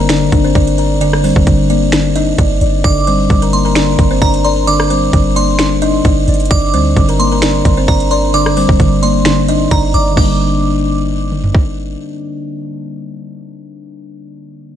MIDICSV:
0, 0, Header, 1, 6, 480
1, 0, Start_track
1, 0, Key_signature, -2, "minor"
1, 0, Tempo, 458015
1, 1060, Time_signature, 4, 2, 24, 8
1, 15468, End_track
2, 0, Start_track
2, 0, Title_t, "Synth bell"
2, 0, Program_c, 0, 98
2, 2980, Note_on_c, 0, 86, 110
2, 3658, Note_off_c, 0, 86, 0
2, 3701, Note_on_c, 0, 84, 80
2, 4378, Note_off_c, 0, 84, 0
2, 4419, Note_on_c, 0, 82, 97
2, 4647, Note_off_c, 0, 82, 0
2, 4658, Note_on_c, 0, 84, 82
2, 4887, Note_off_c, 0, 84, 0
2, 4899, Note_on_c, 0, 86, 109
2, 5577, Note_off_c, 0, 86, 0
2, 5620, Note_on_c, 0, 84, 92
2, 6298, Note_off_c, 0, 84, 0
2, 6819, Note_on_c, 0, 86, 107
2, 7497, Note_off_c, 0, 86, 0
2, 7540, Note_on_c, 0, 84, 87
2, 8218, Note_off_c, 0, 84, 0
2, 8259, Note_on_c, 0, 82, 84
2, 8487, Note_off_c, 0, 82, 0
2, 8500, Note_on_c, 0, 84, 85
2, 8728, Note_off_c, 0, 84, 0
2, 8741, Note_on_c, 0, 86, 105
2, 9418, Note_off_c, 0, 86, 0
2, 9459, Note_on_c, 0, 84, 82
2, 10137, Note_off_c, 0, 84, 0
2, 10179, Note_on_c, 0, 82, 91
2, 10407, Note_off_c, 0, 82, 0
2, 10420, Note_on_c, 0, 86, 85
2, 10647, Note_off_c, 0, 86, 0
2, 10660, Note_on_c, 0, 86, 90
2, 12058, Note_off_c, 0, 86, 0
2, 15468, End_track
3, 0, Start_track
3, 0, Title_t, "Kalimba"
3, 0, Program_c, 1, 108
3, 101, Note_on_c, 1, 74, 97
3, 110, Note_on_c, 1, 62, 72
3, 446, Note_off_c, 1, 74, 0
3, 450, Note_off_c, 1, 62, 0
3, 466, Note_on_c, 1, 72, 83
3, 474, Note_on_c, 1, 60, 61
3, 567, Note_off_c, 1, 72, 0
3, 571, Note_off_c, 1, 60, 0
3, 579, Note_on_c, 1, 74, 94
3, 588, Note_on_c, 1, 62, 70
3, 794, Note_off_c, 1, 74, 0
3, 799, Note_off_c, 1, 62, 0
3, 819, Note_on_c, 1, 70, 68
3, 827, Note_on_c, 1, 82, 56
3, 1034, Note_off_c, 1, 70, 0
3, 1038, Note_off_c, 1, 82, 0
3, 1060, Note_on_c, 1, 74, 117
3, 1068, Note_on_c, 1, 62, 77
3, 1274, Note_off_c, 1, 74, 0
3, 1279, Note_off_c, 1, 62, 0
3, 1299, Note_on_c, 1, 72, 82
3, 1308, Note_on_c, 1, 60, 65
3, 1751, Note_off_c, 1, 72, 0
3, 1755, Note_off_c, 1, 60, 0
3, 1781, Note_on_c, 1, 74, 86
3, 1789, Note_on_c, 1, 62, 60
3, 1994, Note_off_c, 1, 74, 0
3, 1999, Note_off_c, 1, 62, 0
3, 2259, Note_on_c, 1, 75, 87
3, 2267, Note_on_c, 1, 63, 75
3, 2474, Note_off_c, 1, 75, 0
3, 2478, Note_off_c, 1, 63, 0
3, 2500, Note_on_c, 1, 74, 83
3, 2509, Note_on_c, 1, 62, 58
3, 2951, Note_off_c, 1, 74, 0
3, 2955, Note_off_c, 1, 62, 0
3, 2981, Note_on_c, 1, 74, 108
3, 2989, Note_on_c, 1, 62, 81
3, 3194, Note_off_c, 1, 74, 0
3, 3199, Note_off_c, 1, 62, 0
3, 3219, Note_on_c, 1, 72, 71
3, 3227, Note_on_c, 1, 60, 66
3, 3564, Note_off_c, 1, 72, 0
3, 3569, Note_off_c, 1, 60, 0
3, 3585, Note_on_c, 1, 70, 76
3, 3593, Note_on_c, 1, 82, 58
3, 3800, Note_off_c, 1, 70, 0
3, 3804, Note_off_c, 1, 82, 0
3, 3825, Note_on_c, 1, 70, 81
3, 3833, Note_on_c, 1, 82, 71
3, 3926, Note_off_c, 1, 70, 0
3, 3931, Note_off_c, 1, 82, 0
3, 3939, Note_on_c, 1, 74, 95
3, 3948, Note_on_c, 1, 62, 73
3, 4284, Note_off_c, 1, 74, 0
3, 4289, Note_off_c, 1, 62, 0
3, 4304, Note_on_c, 1, 72, 84
3, 4313, Note_on_c, 1, 60, 66
3, 4406, Note_off_c, 1, 72, 0
3, 4411, Note_off_c, 1, 60, 0
3, 4418, Note_on_c, 1, 74, 86
3, 4427, Note_on_c, 1, 62, 70
3, 4633, Note_off_c, 1, 74, 0
3, 4638, Note_off_c, 1, 62, 0
3, 4658, Note_on_c, 1, 70, 71
3, 4667, Note_on_c, 1, 82, 61
3, 4873, Note_off_c, 1, 70, 0
3, 4878, Note_off_c, 1, 82, 0
3, 4898, Note_on_c, 1, 74, 103
3, 4907, Note_on_c, 1, 62, 82
3, 5113, Note_off_c, 1, 74, 0
3, 5118, Note_off_c, 1, 62, 0
3, 5137, Note_on_c, 1, 72, 81
3, 5145, Note_on_c, 1, 60, 62
3, 5589, Note_off_c, 1, 72, 0
3, 5594, Note_off_c, 1, 60, 0
3, 5618, Note_on_c, 1, 74, 88
3, 5627, Note_on_c, 1, 62, 68
3, 5833, Note_off_c, 1, 74, 0
3, 5838, Note_off_c, 1, 62, 0
3, 6098, Note_on_c, 1, 75, 95
3, 6107, Note_on_c, 1, 63, 75
3, 6313, Note_off_c, 1, 75, 0
3, 6318, Note_off_c, 1, 63, 0
3, 6340, Note_on_c, 1, 74, 82
3, 6348, Note_on_c, 1, 62, 65
3, 6791, Note_off_c, 1, 74, 0
3, 6795, Note_off_c, 1, 62, 0
3, 6819, Note_on_c, 1, 74, 108
3, 6827, Note_on_c, 1, 62, 82
3, 7033, Note_off_c, 1, 74, 0
3, 7038, Note_off_c, 1, 62, 0
3, 7061, Note_on_c, 1, 72, 82
3, 7069, Note_on_c, 1, 60, 69
3, 7405, Note_off_c, 1, 72, 0
3, 7410, Note_off_c, 1, 60, 0
3, 7429, Note_on_c, 1, 70, 82
3, 7437, Note_on_c, 1, 82, 63
3, 7642, Note_off_c, 1, 70, 0
3, 7647, Note_off_c, 1, 82, 0
3, 7669, Note_on_c, 1, 70, 85
3, 7677, Note_on_c, 1, 82, 66
3, 7769, Note_off_c, 1, 70, 0
3, 7773, Note_off_c, 1, 82, 0
3, 7782, Note_on_c, 1, 74, 93
3, 7790, Note_on_c, 1, 62, 69
3, 8126, Note_off_c, 1, 74, 0
3, 8130, Note_off_c, 1, 62, 0
3, 8146, Note_on_c, 1, 72, 85
3, 8154, Note_on_c, 1, 60, 62
3, 8247, Note_off_c, 1, 72, 0
3, 8251, Note_off_c, 1, 60, 0
3, 8260, Note_on_c, 1, 74, 93
3, 8268, Note_on_c, 1, 62, 68
3, 8474, Note_off_c, 1, 74, 0
3, 8479, Note_off_c, 1, 62, 0
3, 8499, Note_on_c, 1, 70, 67
3, 8508, Note_on_c, 1, 82, 57
3, 8714, Note_off_c, 1, 70, 0
3, 8718, Note_off_c, 1, 82, 0
3, 8741, Note_on_c, 1, 74, 117
3, 8749, Note_on_c, 1, 62, 80
3, 8955, Note_off_c, 1, 74, 0
3, 8959, Note_off_c, 1, 62, 0
3, 8980, Note_on_c, 1, 72, 83
3, 8989, Note_on_c, 1, 60, 66
3, 9431, Note_off_c, 1, 72, 0
3, 9435, Note_off_c, 1, 60, 0
3, 9461, Note_on_c, 1, 74, 88
3, 9469, Note_on_c, 1, 62, 59
3, 9675, Note_off_c, 1, 74, 0
3, 9679, Note_off_c, 1, 62, 0
3, 9941, Note_on_c, 1, 75, 84
3, 9949, Note_on_c, 1, 63, 75
3, 10154, Note_off_c, 1, 75, 0
3, 10159, Note_off_c, 1, 63, 0
3, 10181, Note_on_c, 1, 74, 83
3, 10189, Note_on_c, 1, 62, 59
3, 10631, Note_off_c, 1, 74, 0
3, 10636, Note_off_c, 1, 62, 0
3, 10659, Note_on_c, 1, 62, 86
3, 12057, Note_off_c, 1, 62, 0
3, 15468, End_track
4, 0, Start_track
4, 0, Title_t, "Synth keys"
4, 0, Program_c, 2, 88
4, 0, Control_c, 2, 64, 127
4, 0, Note_on_c, 2, 50, 88
4, 0, Note_on_c, 2, 55, 85
4, 0, Note_on_c, 2, 58, 86
4, 100, Note_off_c, 2, 50, 0
4, 100, Note_on_c, 2, 50, 99
4, 341, Note_on_c, 2, 62, 89
4, 569, Note_off_c, 2, 50, 0
4, 579, Note_off_c, 2, 55, 0
4, 582, Note_on_c, 2, 50, 82
4, 820, Note_on_c, 2, 74, 92
4, 1042, Note_off_c, 2, 50, 0
4, 1054, Note_on_c, 2, 50, 94
4, 1059, Note_off_c, 2, 58, 0
4, 1299, Note_on_c, 2, 55, 83
4, 1528, Note_off_c, 2, 50, 0
4, 1540, Note_off_c, 2, 62, 0
4, 1541, Note_on_c, 2, 50, 83
4, 1781, Note_on_c, 2, 58, 82
4, 2009, Note_off_c, 2, 50, 0
4, 2020, Note_off_c, 2, 74, 0
4, 2022, Note_on_c, 2, 50, 91
4, 2260, Note_on_c, 2, 62, 84
4, 2489, Note_off_c, 2, 50, 0
4, 2499, Note_off_c, 2, 55, 0
4, 2501, Note_on_c, 2, 50, 85
4, 2739, Note_on_c, 2, 74, 86
4, 2967, Note_off_c, 2, 50, 0
4, 2979, Note_off_c, 2, 74, 0
4, 2979, Note_on_c, 2, 50, 102
4, 2980, Note_off_c, 2, 58, 0
4, 2980, Note_off_c, 2, 62, 0
4, 2992, Control_c, 2, 64, 0
4, 3185, Control_c, 2, 64, 127
4, 3222, Note_on_c, 2, 55, 82
4, 3449, Note_off_c, 2, 50, 0
4, 3461, Note_on_c, 2, 50, 85
4, 3702, Note_on_c, 2, 58, 81
4, 3929, Note_off_c, 2, 50, 0
4, 3942, Note_on_c, 2, 50, 90
4, 4183, Note_on_c, 2, 62, 86
4, 4408, Note_off_c, 2, 50, 0
4, 4420, Note_off_c, 2, 55, 0
4, 4420, Note_on_c, 2, 50, 85
4, 4659, Note_on_c, 2, 74, 94
4, 4889, Note_off_c, 2, 50, 0
4, 4901, Note_off_c, 2, 58, 0
4, 4902, Note_on_c, 2, 50, 94
4, 5140, Note_on_c, 2, 55, 82
4, 5368, Note_off_c, 2, 50, 0
4, 5381, Note_off_c, 2, 62, 0
4, 5381, Note_on_c, 2, 50, 86
4, 5617, Note_on_c, 2, 58, 86
4, 5847, Note_off_c, 2, 50, 0
4, 5859, Note_off_c, 2, 74, 0
4, 5860, Note_on_c, 2, 50, 90
4, 6099, Note_on_c, 2, 62, 86
4, 6328, Note_off_c, 2, 50, 0
4, 6340, Note_off_c, 2, 55, 0
4, 6341, Note_on_c, 2, 50, 89
4, 6583, Note_on_c, 2, 74, 88
4, 6808, Note_off_c, 2, 50, 0
4, 6818, Note_off_c, 2, 58, 0
4, 6819, Note_off_c, 2, 62, 0
4, 6820, Note_on_c, 2, 50, 92
4, 6821, Note_off_c, 2, 74, 0
4, 6834, Control_c, 2, 64, 0
4, 7025, Control_c, 2, 64, 127
4, 7060, Note_on_c, 2, 55, 84
4, 7284, Note_off_c, 2, 50, 0
4, 7296, Note_on_c, 2, 50, 88
4, 7539, Note_on_c, 2, 58, 90
4, 7767, Note_off_c, 2, 50, 0
4, 7780, Note_on_c, 2, 50, 96
4, 8020, Note_on_c, 2, 62, 88
4, 8249, Note_off_c, 2, 50, 0
4, 8260, Note_off_c, 2, 55, 0
4, 8261, Note_on_c, 2, 50, 81
4, 8500, Note_on_c, 2, 74, 91
4, 8722, Note_off_c, 2, 50, 0
4, 8735, Note_on_c, 2, 50, 92
4, 8739, Note_off_c, 2, 58, 0
4, 8979, Note_on_c, 2, 55, 86
4, 9208, Note_off_c, 2, 50, 0
4, 9220, Note_off_c, 2, 62, 0
4, 9221, Note_on_c, 2, 50, 85
4, 9461, Note_on_c, 2, 58, 84
4, 9689, Note_off_c, 2, 50, 0
4, 9700, Note_off_c, 2, 74, 0
4, 9702, Note_on_c, 2, 50, 92
4, 9940, Note_on_c, 2, 62, 85
4, 10169, Note_off_c, 2, 50, 0
4, 10179, Note_off_c, 2, 55, 0
4, 10418, Note_on_c, 2, 74, 87
4, 10596, Note_on_c, 2, 50, 87
4, 10638, Note_on_c, 2, 55, 78
4, 10659, Note_off_c, 2, 74, 0
4, 10660, Note_off_c, 2, 58, 0
4, 10660, Note_off_c, 2, 62, 0
4, 10672, Control_c, 2, 64, 0
4, 10680, Note_on_c, 2, 58, 79
4, 10722, Note_on_c, 2, 62, 95
4, 10870, Control_c, 2, 64, 127
4, 14704, Note_off_c, 2, 50, 0
4, 14746, Note_off_c, 2, 55, 0
4, 14788, Note_off_c, 2, 58, 0
4, 14830, Note_off_c, 2, 62, 0
4, 15468, End_track
5, 0, Start_track
5, 0, Title_t, "808-style bass"
5, 0, Program_c, 3, 38
5, 0, Note_on_c, 3, 31, 104
5, 310, Note_off_c, 3, 31, 0
5, 339, Note_on_c, 3, 31, 106
5, 569, Note_off_c, 3, 31, 0
5, 579, Note_on_c, 3, 31, 109
5, 1392, Note_off_c, 3, 31, 0
5, 1426, Note_on_c, 3, 29, 101
5, 1535, Note_off_c, 3, 29, 0
5, 1539, Note_on_c, 3, 31, 102
5, 2461, Note_off_c, 3, 31, 0
5, 2499, Note_on_c, 3, 31, 110
5, 2730, Note_off_c, 3, 31, 0
5, 2739, Note_on_c, 3, 31, 103
5, 2970, Note_off_c, 3, 31, 0
5, 2979, Note_on_c, 3, 31, 115
5, 3440, Note_off_c, 3, 31, 0
5, 3459, Note_on_c, 3, 31, 105
5, 4150, Note_off_c, 3, 31, 0
5, 4179, Note_on_c, 3, 31, 101
5, 4409, Note_off_c, 3, 31, 0
5, 4419, Note_on_c, 3, 31, 110
5, 5341, Note_off_c, 3, 31, 0
5, 5379, Note_on_c, 3, 31, 104
5, 6301, Note_off_c, 3, 31, 0
5, 6339, Note_on_c, 3, 31, 109
5, 6570, Note_off_c, 3, 31, 0
5, 6579, Note_on_c, 3, 31, 103
5, 6810, Note_off_c, 3, 31, 0
5, 6819, Note_on_c, 3, 31, 107
5, 7059, Note_on_c, 3, 38, 101
5, 7075, Note_off_c, 3, 31, 0
5, 7287, Note_off_c, 3, 38, 0
5, 7300, Note_on_c, 3, 31, 102
5, 7991, Note_off_c, 3, 31, 0
5, 8019, Note_on_c, 3, 31, 102
5, 8249, Note_off_c, 3, 31, 0
5, 8259, Note_on_c, 3, 31, 106
5, 9073, Note_off_c, 3, 31, 0
5, 9106, Note_on_c, 3, 29, 105
5, 9215, Note_off_c, 3, 29, 0
5, 9219, Note_on_c, 3, 31, 102
5, 10141, Note_off_c, 3, 31, 0
5, 10179, Note_on_c, 3, 31, 109
5, 10410, Note_off_c, 3, 31, 0
5, 10419, Note_on_c, 3, 31, 103
5, 10650, Note_off_c, 3, 31, 0
5, 10659, Note_on_c, 3, 31, 108
5, 12537, Note_off_c, 3, 31, 0
5, 15468, End_track
6, 0, Start_track
6, 0, Title_t, "Drums"
6, 95, Note_on_c, 9, 26, 100
6, 99, Note_on_c, 9, 38, 122
6, 100, Note_on_c, 9, 42, 92
6, 199, Note_off_c, 9, 26, 0
6, 204, Note_off_c, 9, 38, 0
6, 205, Note_off_c, 9, 42, 0
6, 339, Note_on_c, 9, 36, 105
6, 339, Note_on_c, 9, 42, 83
6, 444, Note_off_c, 9, 36, 0
6, 444, Note_off_c, 9, 42, 0
6, 579, Note_on_c, 9, 36, 102
6, 579, Note_on_c, 9, 42, 42
6, 684, Note_off_c, 9, 36, 0
6, 684, Note_off_c, 9, 42, 0
6, 707, Note_on_c, 9, 42, 70
6, 812, Note_off_c, 9, 42, 0
6, 818, Note_on_c, 9, 42, 67
6, 923, Note_off_c, 9, 42, 0
6, 1059, Note_on_c, 9, 42, 78
6, 1164, Note_off_c, 9, 42, 0
6, 1188, Note_on_c, 9, 37, 94
6, 1292, Note_off_c, 9, 37, 0
6, 1300, Note_on_c, 9, 46, 79
6, 1405, Note_off_c, 9, 46, 0
6, 1426, Note_on_c, 9, 36, 102
6, 1531, Note_off_c, 9, 36, 0
6, 1539, Note_on_c, 9, 36, 91
6, 1539, Note_on_c, 9, 42, 76
6, 1644, Note_off_c, 9, 36, 0
6, 1644, Note_off_c, 9, 42, 0
6, 1781, Note_on_c, 9, 42, 76
6, 1885, Note_off_c, 9, 42, 0
6, 2015, Note_on_c, 9, 26, 93
6, 2019, Note_on_c, 9, 38, 122
6, 2020, Note_on_c, 9, 42, 93
6, 2120, Note_off_c, 9, 26, 0
6, 2124, Note_off_c, 9, 38, 0
6, 2125, Note_off_c, 9, 42, 0
6, 2259, Note_on_c, 9, 42, 81
6, 2364, Note_off_c, 9, 42, 0
6, 2499, Note_on_c, 9, 36, 102
6, 2499, Note_on_c, 9, 42, 72
6, 2603, Note_off_c, 9, 42, 0
6, 2604, Note_off_c, 9, 36, 0
6, 2738, Note_on_c, 9, 42, 68
6, 2842, Note_off_c, 9, 42, 0
6, 2978, Note_on_c, 9, 42, 79
6, 2979, Note_on_c, 9, 36, 109
6, 3083, Note_off_c, 9, 42, 0
6, 3084, Note_off_c, 9, 36, 0
6, 3219, Note_on_c, 9, 42, 78
6, 3324, Note_off_c, 9, 42, 0
6, 3459, Note_on_c, 9, 36, 94
6, 3459, Note_on_c, 9, 42, 47
6, 3564, Note_off_c, 9, 36, 0
6, 3564, Note_off_c, 9, 42, 0
6, 3586, Note_on_c, 9, 42, 82
6, 3691, Note_off_c, 9, 42, 0
6, 3700, Note_on_c, 9, 42, 82
6, 3805, Note_off_c, 9, 42, 0
6, 3935, Note_on_c, 9, 26, 95
6, 3939, Note_on_c, 9, 38, 120
6, 3940, Note_on_c, 9, 42, 93
6, 4039, Note_off_c, 9, 26, 0
6, 4044, Note_off_c, 9, 38, 0
6, 4045, Note_off_c, 9, 42, 0
6, 4178, Note_on_c, 9, 36, 101
6, 4179, Note_on_c, 9, 42, 81
6, 4283, Note_off_c, 9, 36, 0
6, 4283, Note_off_c, 9, 42, 0
6, 4419, Note_on_c, 9, 36, 98
6, 4419, Note_on_c, 9, 42, 44
6, 4524, Note_off_c, 9, 36, 0
6, 4524, Note_off_c, 9, 42, 0
6, 4546, Note_on_c, 9, 42, 68
6, 4651, Note_off_c, 9, 42, 0
6, 4658, Note_on_c, 9, 42, 68
6, 4762, Note_off_c, 9, 42, 0
6, 4899, Note_on_c, 9, 42, 81
6, 5004, Note_off_c, 9, 42, 0
6, 5027, Note_on_c, 9, 37, 99
6, 5132, Note_off_c, 9, 37, 0
6, 5139, Note_on_c, 9, 42, 80
6, 5244, Note_off_c, 9, 42, 0
6, 5379, Note_on_c, 9, 36, 91
6, 5379, Note_on_c, 9, 42, 77
6, 5484, Note_off_c, 9, 36, 0
6, 5484, Note_off_c, 9, 42, 0
6, 5620, Note_on_c, 9, 42, 80
6, 5725, Note_off_c, 9, 42, 0
6, 5855, Note_on_c, 9, 26, 96
6, 5859, Note_on_c, 9, 38, 120
6, 5860, Note_on_c, 9, 42, 89
6, 5959, Note_off_c, 9, 26, 0
6, 5964, Note_off_c, 9, 38, 0
6, 5965, Note_off_c, 9, 42, 0
6, 6099, Note_on_c, 9, 42, 83
6, 6204, Note_off_c, 9, 42, 0
6, 6339, Note_on_c, 9, 36, 104
6, 6339, Note_on_c, 9, 42, 74
6, 6444, Note_off_c, 9, 36, 0
6, 6444, Note_off_c, 9, 42, 0
6, 6579, Note_on_c, 9, 42, 58
6, 6643, Note_off_c, 9, 42, 0
6, 6643, Note_on_c, 9, 42, 58
6, 6707, Note_off_c, 9, 42, 0
6, 6707, Note_on_c, 9, 42, 59
6, 6763, Note_off_c, 9, 42, 0
6, 6763, Note_on_c, 9, 42, 60
6, 6819, Note_off_c, 9, 42, 0
6, 6819, Note_on_c, 9, 36, 110
6, 6819, Note_on_c, 9, 42, 80
6, 6924, Note_off_c, 9, 36, 0
6, 6924, Note_off_c, 9, 42, 0
6, 7060, Note_on_c, 9, 42, 79
6, 7165, Note_off_c, 9, 42, 0
6, 7300, Note_on_c, 9, 36, 92
6, 7300, Note_on_c, 9, 42, 47
6, 7404, Note_off_c, 9, 36, 0
6, 7405, Note_off_c, 9, 42, 0
6, 7427, Note_on_c, 9, 42, 81
6, 7532, Note_off_c, 9, 42, 0
6, 7542, Note_on_c, 9, 42, 81
6, 7646, Note_off_c, 9, 42, 0
6, 7775, Note_on_c, 9, 26, 98
6, 7780, Note_on_c, 9, 38, 124
6, 7781, Note_on_c, 9, 42, 90
6, 7880, Note_off_c, 9, 26, 0
6, 7885, Note_off_c, 9, 38, 0
6, 7885, Note_off_c, 9, 42, 0
6, 8019, Note_on_c, 9, 36, 100
6, 8019, Note_on_c, 9, 42, 82
6, 8124, Note_off_c, 9, 36, 0
6, 8124, Note_off_c, 9, 42, 0
6, 8259, Note_on_c, 9, 36, 100
6, 8259, Note_on_c, 9, 42, 41
6, 8364, Note_off_c, 9, 36, 0
6, 8364, Note_off_c, 9, 42, 0
6, 8387, Note_on_c, 9, 42, 68
6, 8491, Note_off_c, 9, 42, 0
6, 8498, Note_on_c, 9, 42, 67
6, 8603, Note_off_c, 9, 42, 0
6, 8739, Note_on_c, 9, 42, 80
6, 8844, Note_off_c, 9, 42, 0
6, 8868, Note_on_c, 9, 37, 97
6, 8972, Note_off_c, 9, 37, 0
6, 8980, Note_on_c, 9, 46, 78
6, 9084, Note_off_c, 9, 46, 0
6, 9106, Note_on_c, 9, 36, 104
6, 9211, Note_off_c, 9, 36, 0
6, 9219, Note_on_c, 9, 36, 92
6, 9219, Note_on_c, 9, 42, 73
6, 9324, Note_off_c, 9, 36, 0
6, 9324, Note_off_c, 9, 42, 0
6, 9461, Note_on_c, 9, 42, 79
6, 9565, Note_off_c, 9, 42, 0
6, 9695, Note_on_c, 9, 26, 97
6, 9699, Note_on_c, 9, 38, 122
6, 9700, Note_on_c, 9, 42, 89
6, 9799, Note_off_c, 9, 26, 0
6, 9804, Note_off_c, 9, 38, 0
6, 9805, Note_off_c, 9, 42, 0
6, 9939, Note_on_c, 9, 42, 81
6, 10043, Note_off_c, 9, 42, 0
6, 10178, Note_on_c, 9, 42, 75
6, 10179, Note_on_c, 9, 36, 99
6, 10283, Note_off_c, 9, 42, 0
6, 10284, Note_off_c, 9, 36, 0
6, 10418, Note_on_c, 9, 42, 69
6, 10522, Note_off_c, 9, 42, 0
6, 10659, Note_on_c, 9, 36, 108
6, 10659, Note_on_c, 9, 49, 90
6, 10764, Note_off_c, 9, 36, 0
6, 10764, Note_off_c, 9, 49, 0
6, 11859, Note_on_c, 9, 47, 61
6, 11964, Note_off_c, 9, 47, 0
6, 11987, Note_on_c, 9, 43, 76
6, 12092, Note_off_c, 9, 43, 0
6, 12099, Note_on_c, 9, 36, 94
6, 12204, Note_off_c, 9, 36, 0
6, 15468, End_track
0, 0, End_of_file